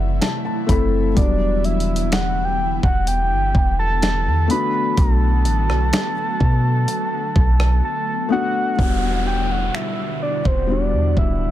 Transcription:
Already playing: 808-style bass F#1, ambient pad C3 E3 F#3 A3 E4, soft synth lead C5, felt piano D5 E5 F#5
0.21 felt piano A5, snare, closed hi-hat
0.45 felt piano A5
0.67 808-style bass F#1, felt piano A3 C4 E4 B5, kick, closed hi-hat
0.71 felt piano A4
1.14 808-style bass E1, ambient pad D3 B3, felt piano G3 B3 D4, soft synth lead D5, kick, closed hi-hat
1.19 felt piano F#3
1.64 soft synth lead E5, closed hi-hat
1.80 closed hi-hat
1.96 closed hi-hat
2.12 soft synth lead F#5, snare, closed hi-hat
2.45 soft synth lead G5
2.83 808-style bass E1, soft synth lead F#5, kick
3.07 soft synth lead G5, closed hi-hat
3.31 808-style bass G1
3.55 808-style bass E1, kick
3.79 soft synth lead A5
4.02 snare, closed hi-hat
4.26 808-style bass E2
4.48 ambient pad F#3 A3 F#4, felt piano A3 B3 D4, soft synth lead B5, closed hi-hat
4.52 felt piano F#4
4.97 808-style bass B1, soft synth lead A5, kick, closed hi-hat
5.45 808-style bass A1, closed hi-hat
5.69 808-style bass B1, cross-stick
5.93 snare, closed hi-hat
6.40 808-style bass B2, kick
6.88 closed hi-hat
7.36 808-style bass B1, kick
7.60 cross-stick
7.85 soft synth lead A5
8.29 felt piano A3 B3 D4, soft synth lead F#5
8.33 felt piano F#4
8.76 808-style bass E1, ambient pad B2 D3 G3 E4 F#5, felt piano G3 B3 D4, kick, downlifter
8.81 felt piano F#4
9.27 soft synth lead G5
9.51 soft synth lead F#5
9.75 soft synth lead E5, finger snap
10.22 soft synth lead D5
10.45 808-style bass E1, soft synth lead C5, kick
10.67 felt piano G3 B3 D4, ambient pad D4, soft synth lead D5
10.71 felt piano F#4
10.93 808-style bass E2
11.17 808-style bass D1, soft synth lead E5, kick

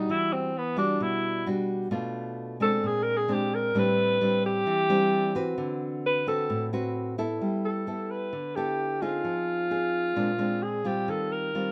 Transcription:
Already playing: nylon-string guitar G3 D4 F#4, alto saxophone D#4
0.09 nylon-string guitar E3, alto saxophone E4
0.33 alto saxophone C4
0.58 alto saxophone B3
0.77 nylon-string guitar G3 D4 F#4, alto saxophone D4
1.00 nylon-string guitar B2, alto saxophone E4
1.46 nylon-string guitar G3 D4 F#4
1.91 nylon-string guitar B2 A3 D4 F4
2.60 nylon-string guitar G#3 C4 D4, alto saxophone A4
2.83 nylon-string guitar A#2, alto saxophone G#4
3.03 alto saxophone A#4
3.17 alto saxophone G#4
3.28 nylon-string guitar G#3 C4 D4
3.33 alto saxophone G4
3.55 alto saxophone A#4
3.75 nylon-string guitar A2 G3 C4 D4
3.79 alto saxophone B4
4.21 nylon-string guitar G3 C4 D4
4.46 alto saxophone G4
4.66 nylon-string guitar E3
4.90 nylon-string guitar G3 C4 D4
5.35 nylon-string guitar C4 F#4 B4
5.58 nylon-string guitar D3
6.06 alto saxophone B4
6.27 nylon-string guitar C4 F#4 B4, alto saxophone A4
6.50 nylon-string guitar A2
6.73 nylon-string guitar C4 F#4 B4
7.18 nylon-string guitar B3 E4 A4
7.41 nylon-string guitar G3
7.65 alto saxophone A4
7.87 nylon-string guitar B3 E4 A4
8.10 alto saxophone B4
8.33 nylon-string guitar D3
8.56 nylon-string guitar B3 E4 A4, alto saxophone G4
9.02 nylon-string guitar C4 D#4 G#4, alto saxophone F4
9.24 nylon-string guitar F3
9.70 nylon-string guitar C4 D#4 G#4
10.16 nylon-string guitar A#2 G#3 C4 D4
10.38 nylon-string guitar G#3 C4 D4
10.63 alto saxophone G#4
10.84 nylon-string guitar G3 C4 F4, alto saxophone G4
11.08 nylon-string guitar D#3, alto saxophone A4
11.32 alto saxophone A#4
11.55 nylon-string guitar G3 C4 F4

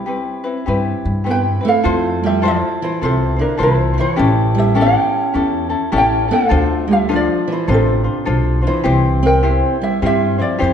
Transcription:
0.06 ukulele C4 E4 G4 B4
0.44 ukulele C4 E4 B4
0.66 upright bass G2, ukulele C4 E4 G4 B4
1.05 upright bass G2
1.24 steel-string acoustic guitar B3, ukulele C4 E4 G4 B4
1.30 ukulele B4 G5
1.61 ukulele C4 E4 B4
1.65 steel-string acoustic guitar A3, ukulele A4 F5
1.83 upright bass F2, ukulele E4 F4 A4 C5
2.23 steel-string acoustic guitar G3, ukulele G4 E5
2.42 steel-string acoustic guitar F3, ukulele E4 F4 A4 C5
2.47 ukulele F4 D5
2.82 steel-string acoustic guitar E3, ukulele E4 C5
3.01 upright bass C2, steel-string acoustic guitar C3, ukulele C4 E4 F4 A4 C5
3.36 steel-string acoustic guitar D3, ukulele E4 F4 C5
3.41 ukulele D4 A#4
3.57 upright bass C2, steel-string acoustic guitar E3, ukulele E4 F4 A4 C5
3.62 ukulele E4 C5
3.94 ukulele E4 F4 C5
3.98 steel-string acoustic guitar E3, ukulele E4 C#5
4.16 upright bass A1, ukulele C#4 E4 G4 A4
4.55 steel-string acoustic guitar G3, ukulele G4
4.59 ukulele E5
4.75 ukulele C#4 E4 G4 A4, steel-string acoustic guitar C#4
4.81 ukulele C#5 G5
5.33 upright bass E2, ukulele C#4 E4 G4 A4
5.69 ukulele C#4 E4 A4
5.92 upright bass A1, ukulele C#4 E4 G4 A4, steel-string acoustic guitar C#4
5.96 ukulele C#5 G5
6.28 steel-string acoustic guitar A3, ukulele C#4 E4 A4
6.32 ukulele A4 F5
6.49 upright bass D2, ukulele D4 F4 A4 C5
6.88 steel-string acoustic guitar G3, ukulele G4
6.93 ukulele E5
7.09 steel-string acoustic guitar F3, ukulele D4 F4 A4 C5
7.14 ukulele F4 D5
7.48 steel-string acoustic guitar E3
7.52 ukulele E4 C5
7.68 upright bass A1, steel-string acoustic guitar C3, ukulele D4 F4 A4 C5
7.72 ukulele C4 A4
8.04 ukulele D4 F4 C5
8.25 upright bass B1, ukulele D4 F4 A4 C5
8.62 ukulele D4 F4 C5
8.67 steel-string acoustic guitar E3, ukulele E4 C5
8.84 upright bass C2, ukulele C4 E4 G4 C5
9.23 steel-string acoustic guitar C4, ukulele A#4
9.27 ukulele G5
9.43 ukulele C4 E4 G4 C5
9.82 steel-string acoustic guitar G3, ukulele G4 E5
10.02 upright bass G2, steel-string acoustic guitar G3, ukulele C4 E4 G4 C5
10.06 ukulele E5
10.38 steel-string acoustic guitar F3, ukulele C4 E4 F4 C5 D5
10.58 upright bass F2, steel-string acoustic guitar E3, ukulele C4 E4 G4 C5
10.64 ukulele E4 C5

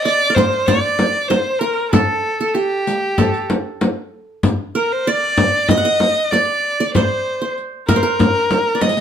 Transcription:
0.04 violin D5, qanun D5
0.30 qanun A#4
0.35 violin C5, qanun C5, riq, frame drum
0.66 violin D5, qanun D5, riq, frame drum
0.84 riq
0.99 riq, frame drum
1.28 violin C5, qanun C5, riq, frame drum
1.59 violin A#4, qanun A#4
1.91 violin A4, qanun A4, riq, frame drum
2.41 qanun A4
2.48 violin A4
2.54 violin G4, qanun G4
2.87 riq
3.18 qanun A4, riq, frame drum
3.34 riq
3.50 riq, frame drum
3.81 riq, frame drum
4.43 riq, frame drum
4.75 qanun A#4, violin A#4
4.92 violin C5
5.07 qanun D5, violin D5
5.37 riq, frame drum
5.68 violin D#5, qanun D#5, riq, frame drum
5.78 qanun F#5
5.85 qanun D#5, riq
6.00 riq, frame drum
6.31 violin D5, qanun D5, riq, frame drum
6.80 qanun D5
6.94 violin C5, qanun C5, riq, frame drum
7.42 qanun C5
7.58 riq
7.87 violin A#4, qanun A#4, riq, frame drum
7.96 qanun C5
8.03 qanun A#4
8.19 riq, frame drum
8.35 riq
8.51 riq, frame drum
8.75 qanun D5
8.81 qanun D#5, violin D#5, riq, frame drum
8.89 riq
8.97 riq

